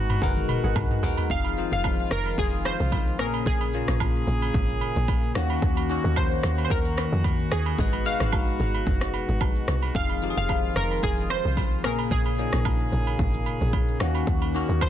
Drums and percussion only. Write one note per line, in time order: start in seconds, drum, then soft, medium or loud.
0.10 mid tom loud
0.10 high agogo medium
0.10 shaker medium
0.22 kick loud
0.22 high tom medium
0.22 shaker medium
0.37 high tom medium
0.37 shaker medium
0.49 mid tom medium
0.49 high agogo medium
0.49 shaker medium
0.64 shaker soft
0.76 kick loud
0.76 mid tom loud
0.76 high agogo medium
0.76 low woodblock medium
0.76 shaker medium
0.91 mid tom medium
0.91 shaker soft
1.03 floor tom loud
1.03 open hi-hat loud
1.03 shaker loud
1.17 floor tom loud
1.17 high agogo medium
1.17 shaker medium
1.30 kick loud
1.30 shaker medium
1.44 high agogo medium
1.44 shaker medium
1.57 shaker medium
1.72 shaker medium
1.84 kick medium
1.84 high agogo medium
1.84 low woodblock medium
1.84 shaker medium
1.99 shaker soft
2.11 cross-stick medium
2.11 shaker medium
2.26 high agogo medium
2.26 shaker medium
2.38 kick loud
2.38 shaker medium
2.53 shaker medium
2.65 cross-stick medium
2.65 high agogo medium
2.65 shaker medium
2.80 shaker soft
2.92 kick loud
2.92 high agogo medium
2.92 shaker medium
3.07 shaker soft
3.19 cross-stick medium
3.19 shaker loud
3.34 high agogo medium
3.34 shaker medium
3.46 kick loud
3.46 shaker medium
3.61 high agogo medium
3.61 shaker medium
3.73 shaker medium
3.88 cross-stick medium
3.88 shaker medium
4.00 kick medium
4.00 high agogo medium
4.00 low woodblock medium
4.00 shaker medium
4.15 shaker medium
4.27 shaker medium
4.42 high agogo medium
4.42 shaker medium
4.54 kick loud
4.54 shaker medium
4.69 shaker medium
4.81 high agogo medium
4.81 shaker medium
4.96 shaker soft
5.08 kick loud
5.08 high agogo medium
5.08 shaker medium
5.23 shaker soft
5.35 cross-stick loud
5.35 shaker loud
5.50 high agogo medium
5.50 shaker medium
5.62 kick loud
5.62 shaker medium
5.77 high agogo medium
5.77 shaker medium
5.89 shaker medium
6.04 shaker soft
6.16 kick medium
6.16 high agogo medium
6.16 low woodblock medium
6.16 shaker medium
6.31 shaker soft
6.43 cross-stick medium
6.43 shaker medium
6.58 high agogo medium
6.58 shaker medium
6.70 kick loud
6.70 shaker medium
6.85 shaker medium
6.97 cross-stick medium
6.97 high agogo medium
6.97 shaker medium
7.12 shaker soft
7.24 kick loud
7.24 high agogo medium
7.24 shaker medium
7.39 shaker soft
7.52 cross-stick loud
7.52 shaker loud
7.66 high agogo medium
7.66 shaker medium
7.78 kick loud
7.78 shaker medium
7.93 high agogo medium
7.93 shaker medium
8.05 shaker medium
8.20 cross-stick medium
8.20 shaker medium
8.32 kick medium
8.32 high agogo medium
8.32 low woodblock medium
8.32 shaker medium
8.48 shaker soft
8.60 shaker medium
8.74 high agogo medium
8.74 shaker medium
8.87 kick loud
8.87 shaker medium
9.01 cross-stick medium
9.01 shaker medium
9.14 high agogo medium
9.14 shaker medium
9.29 shaker soft
9.41 kick loud
9.41 high agogo medium
9.41 low woodblock medium
9.41 shaker medium
9.56 shaker soft
9.68 cross-stick medium
9.68 shaker loud
9.82 high agogo medium
9.82 shaker soft
9.95 kick loud
9.95 shaker medium
10.09 high agogo medium
10.09 shaker medium
10.22 shaker medium
10.37 shaker medium
10.49 kick medium
10.49 high agogo medium
10.49 low woodblock medium
10.49 shaker medium
10.64 shaker soft
10.76 cross-stick medium
10.76 shaker medium
10.91 high agogo medium
10.91 shaker soft
11.03 kick loud
11.03 shaker medium
11.18 shaker medium
11.30 cross-stick medium
11.30 high agogo medium
11.30 shaker medium
11.45 shaker soft
11.57 kick loud
11.57 high agogo medium
11.57 shaker medium
11.72 shaker soft
11.84 cross-stick loud
11.84 shaker loud
11.99 high agogo medium
11.99 shaker medium
12.11 kick loud
12.11 shaker medium
12.26 high agogo medium
12.26 shaker medium
12.38 shaker medium
12.53 cross-stick medium
12.53 shaker medium
12.65 kick medium
12.65 high agogo medium
12.65 low woodblock medium
12.65 shaker medium
12.80 shaker soft
12.92 shaker medium
13.07 high agogo medium
13.07 shaker medium
13.19 kick loud
13.19 shaker medium
13.34 shaker medium
13.46 high agogo medium
13.46 shaker medium
13.61 shaker soft
13.73 kick loud
13.73 high agogo medium
13.73 shaker medium
13.88 shaker soft
14.00 cross-stick medium
14.00 shaker loud
14.15 high agogo medium
14.15 shaker medium
14.27 kick loud
14.27 shaker medium
14.42 high agogo medium
14.42 shaker medium
14.54 shaker medium
14.69 shaker medium
14.81 kick medium
14.81 high agogo medium
14.81 low woodblock medium
14.81 shaker medium